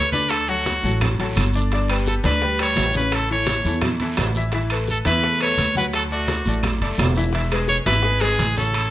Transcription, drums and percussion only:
0.12 high bongo, high conga, short guiro, maracas
0.31 high bongo, high conga, high timbale, long guiro, claves, maracas
0.48 high conga, maracas
0.66 high bongo, high conga, high timbale, short guiro, maracas
0.83 high bongo, high conga, short guiro, maracas
1.01 high bongo, high conga, low conga, high timbale, long guiro, claves, maracas
1.19 high bongo, high conga, high timbale, maracas
1.36 high bongo, low bongo, high conga, high timbale, short guiro, claves, maracas
1.53 high bongo, high conga, short guiro, maracas
1.71 high bongo, high timbale, long guiro, maracas
1.89 high conga, high timbale, claves, maracas
2.06 high bongo, high conga, short guiro, maracas
2.23 high bongo, high conga, high timbale, short guiro, maracas
2.41 high bongo, high conga, long guiro, maracas
2.59 high bongo, high conga, high timbale, claves, maracas
2.76 high bongo, low bongo, high conga, high timbale, low timbale, short guiro, maracas
2.93 high bongo, high conga, short guiro, maracas
3.11 high bongo, high conga, high timbale, long guiro, claves, maracas
3.28 high conga, maracas
3.46 high bongo, high conga, high timbale, short guiro, maracas
3.64 high bongo, high conga, short guiro, maracas
3.81 high bongo, high conga, low conga, high timbale, long guiro, claves, maracas
3.99 high bongo, high conga, low conga, high timbale, maracas
4.17 high bongo, low bongo, high conga, high timbale, low timbale, short guiro, claves, maracas
4.35 high bongo, high conga, short guiro, maracas
4.52 high bongo, high conga, high timbale, long guiro, maracas
4.70 high conga, high timbale, claves, maracas
4.87 high bongo, high conga, short guiro, maracas
5.05 high bongo, high conga, high timbale, short guiro, maracas
5.22 high bongo, high conga, maracas
5.40 high bongo, high conga, high timbale, claves, maracas
5.57 high bongo, low bongo, high conga, high timbale, short guiro, maracas
5.75 high bongo, high conga, short guiro, maracas
5.93 high bongo, high conga, high timbale, long guiro, claves, maracas
6.10 high conga, maracas
6.28 high bongo, high conga, high timbale, short guiro, maracas
6.45 high bongo, high conga, short guiro, maracas
6.63 high bongo, high conga, low conga, high timbale, long guiro, claves, maracas
6.81 high bongo, high conga, high timbale, maracas
6.97 high bongo, low bongo, high conga, high timbale, low timbale, short guiro, claves, maracas
7.15 high bongo, high conga, short guiro, maracas
7.33 high bongo, high conga, high timbale, long guiro, maracas
7.50 high conga, high timbale, claves, maracas
7.68 high bongo, high conga, short guiro, maracas
7.85 high bongo, high conga, high timbale, short guiro, maracas
8.03 high bongo, high conga, long guiro, maracas
8.21 high bongo, high conga, high timbale, claves, maracas
8.39 high bongo, low bongo, high conga, high timbale, short guiro, maracas
8.56 high bongo, high conga, short guiro, maracas
8.74 high bongo, high conga, high timbale, long guiro, claves, maracas

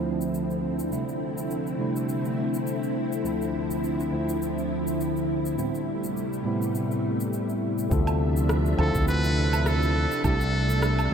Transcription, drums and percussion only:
0.21 shaker
0.34 shaker
0.51 shaker
0.79 shaker
0.93 shaker
1.09 shaker
1.38 shaker
1.51 shaker
1.67 shaker
1.96 shaker
2.09 shaker
2.25 shaker
2.54 shaker
2.67 shaker
2.83 shaker
3.12 shaker
3.26 shaker
3.42 shaker
3.71 shaker
3.84 shaker
4.00 shaker
4.29 shaker
4.42 shaker
4.58 shaker
4.87 shaker
5.01 shaker
5.17 shaker
5.46 shaker
5.59 shaker
5.75 shaker
6.04 shaker
6.17 shaker
6.33 shaker
6.62 shaker
6.75 shaker
6.91 shaker
7.20 shaker
7.33 shaker
7.49 shaker
7.78 shaker
7.91 kick, shaker
8.07 low woodblock, shaker
8.37 shaker
8.49 cross-stick, shaker
8.66 shaker
8.79 low woodblock
8.95 kick, shaker
9.08 shaker
9.24 shaker
9.53 low woodblock, shaker
9.66 cross-stick, shaker
9.82 shaker
10.12 shaker
10.24 kick, low woodblock, shaker
10.41 shaker
10.70 shaker
10.82 cross-stick, shaker
10.99 low woodblock, shaker

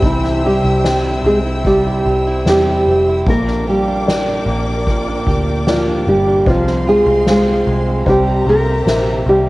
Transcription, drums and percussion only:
0.02 kick, ride
0.24 snare
0.43 ride
0.84 snare, ride
1.25 ride
1.65 kick, ride
2.05 ride
2.45 snare, ride
2.86 ride
3.27 kick, ride
3.47 snare
3.68 ride
4.08 snare, ride
4.47 ride
4.87 kick, ride
5.26 kick, ride
5.66 snare, ride
6.07 ride
6.46 kick, ride
6.67 snare
6.86 ride
7.26 snare, ride
7.66 ride
8.06 kick, ride
8.47 ride
8.86 snare, ride
9.27 ride

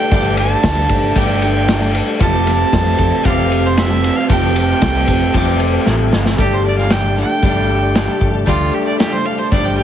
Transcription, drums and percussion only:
0.11 kick, ride
0.37 ride
0.63 kick, snare, ride, tambourine
0.89 kick, ride
1.16 kick, ride
1.42 ride
1.68 snare, ride, tambourine
1.95 ride
2.20 kick, ride
2.47 snare, ride
2.72 kick, snare, ride, tambourine
2.98 kick, ride
3.25 kick, ride
3.52 ride
3.77 snare, ride, tambourine
4.04 snare, ride
4.29 kick, ride
4.56 ride
4.82 kick, snare, ride, tambourine
5.08 kick, ride
5.34 kick, ride
5.60 ride
5.86 snare, tambourine
6.13 snare
6.26 snare
6.38 kick, closed hi-hat
6.78 snare
6.90 snare, closed hi-hat
7.17 snare
7.43 kick, closed hi-hat
7.95 snare, closed hi-hat
8.21 kick
8.47 kick, closed hi-hat
9.00 snare, closed hi-hat
9.52 kick, closed hi-hat

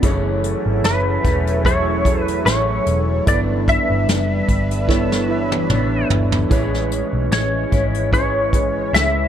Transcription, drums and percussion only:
0.03 kick, closed hi-hat
0.44 closed hi-hat
0.84 snare, closed hi-hat
1.24 kick, closed hi-hat
1.47 closed hi-hat
1.65 kick, closed hi-hat
2.05 kick, closed hi-hat
2.28 closed hi-hat
2.47 snare, closed hi-hat
2.86 closed hi-hat
3.27 kick, closed hi-hat
3.68 kick, closed hi-hat
4.08 snare, closed hi-hat
4.48 kick, closed hi-hat
4.71 closed hi-hat
4.89 kick, snare
5.12 snare
5.52 high tom
5.70 mid tom
6.10 floor tom
6.32 floor tom
6.51 kick, closed hi-hat
6.74 snare
6.92 closed hi-hat
7.32 snare, closed hi-hat
7.72 kick, closed hi-hat
7.94 closed hi-hat
8.13 kick, closed hi-hat
8.53 kick, closed hi-hat
8.95 snare, closed hi-hat

